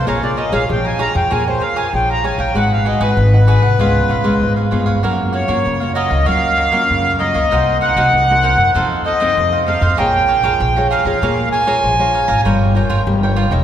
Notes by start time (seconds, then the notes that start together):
0.06 A#1 A#3 F4 G#4 C#5 F5 A#5
0.22 F4 G#4 C#5 D5
0.37 G#4 C#5 D#5 F5 A#5
0.52 A#1 F4 G#4 C#5 F5 A#5
0.69 A#1 F3 F4 G#4 C#5 G5
0.85 C#5 F5 G#5 A#5
0.99 F4 G#4 C#5 F5 A#5
1.13 F2 C#5 F5 G5 A#5
1.31 A#2 A#3 F4 G#4 C#5 F5 G#5 A#5
1.47 F4 G#4 C5 C#5
1.61 G#4 C#5 F5 A#5
1.76 G#4 C#5 F5 G#5 A#5
1.93 A#1 F3 F4 G#4 C#5 G5
2.10 C#5 F5 A#5
2.23 F4 G#4 C#5 F5 G#5 A#5
2.38 A#1 C#5 F5 G5 A#5
2.54 G#1 G#3 D#4 F#4 G#4 B4 F#5
2.73 F5
2.85 F#4 G#4 B4 D#5 F#5
3.00 G#1 D#4 F#4 G#4 B4 F#5
3.17 G#1 D#3
3.33 D#4 F#4 G#4 B4 F#5
3.47 F#4 G#4 B4 F#5
3.62 C2 G#4 B4 F#5
3.79 C#2 C#3 G#3 B3 F4 B4 C#5 F5
4.09 A#1 F4 B4 C#5 F5
4.24 G#3 B3 F4 B4 C#5 F5
4.41 G#1 G#2
4.56 B4 C#5 F5
4.71 G1 G#3 B3 F4 B4 C#5 F5
4.86 B4 C#5 F5
5.03 F#2 F#3 A#3 C#4 F4 F#4 A#4 C#5 F5
5.33 F#4 A#4 C#5 F5
5.48 F#2 A#3 C#4 F4 F#4 A#4 C#5 F5
5.66 F#2 C#3
5.80 A#3 C#4 F4 A#4 C#5 F5
5.95 F#4 A#4 C#5 D#5 F5
6.10 C#2 A#4 C#5 F5
6.26 F#3 A#3 C#4 F4 F#4 A#4 C#5 F5
6.57 F#4 A#4 C#5 F5
6.72 A#3 C#4 F4 F#4 A#4 C#5 F5
6.90 F#2 C#3
7.05 A#4 C#5 F5
7.19 A#3 C#4 F4 F#4 A#4 C#5 D#5 F5
7.34 C#2 A#4 C#5 F5
7.51 C2 C3 A#3 D#4 F#4 A#4 C5 F#5
7.81 D#4 A#4 C5 F#5
7.96 C2 A#3 D#4 F#4 A#4 C5 F#5
8.13 C2 C3
8.30 A#3 D#4 F#4 A#4 C5 F#5
8.43 D#4 A#4 C5 F#5
8.58 F#2 A#4 C5 F#5
8.74 F2 F3 C4 D#4 A4 C5 F5
9.04 D#4 A4 C5 D#5 F5
9.20 C4 D#4 A4 C5 F5
9.37 F2 C3
9.52 A4 C5 F5
9.66 C4 D#4 A4 C5 F5
9.81 F2 A4 C5 F5
9.97 A#1 A#3 F4 G#4 C#5 F5 G5 A#5
10.28 G#4 C#5 F5 A#5
10.43 A#1 F4 G#4 C#5 F5 A#5
10.60 A#1 F3
10.76 F4 G#4 C#5 F5 A#5
10.90 G#4 C#5 F5 A#5
11.05 F2 F4 G#4 C#5 F5 A#5
11.22 A#2 A#3 F4 G#4 C#5 F5 A#5
11.52 G#4 C#5 F5 G#5 A#5
11.67 F4 G#4 C#5 F5 A#5
11.83 A#1 F3
11.99 F4 G#4 C#5 F5 A#5
12.14 G#4 C#5 F5 A#5
12.28 G#1 C#5 F5 A#5
12.45 G1 G3 F4 A#4 C#5 G5
12.75 F4 A#4 C#5 G5
12.89 G1 F4 A#4 C#5 G5
13.07 G1 G3
13.23 F4 A#4 C#5 G5
13.36 F4 A#4 C#5 G5
13.51 E1 D#4 A4 A#4 C#5 G5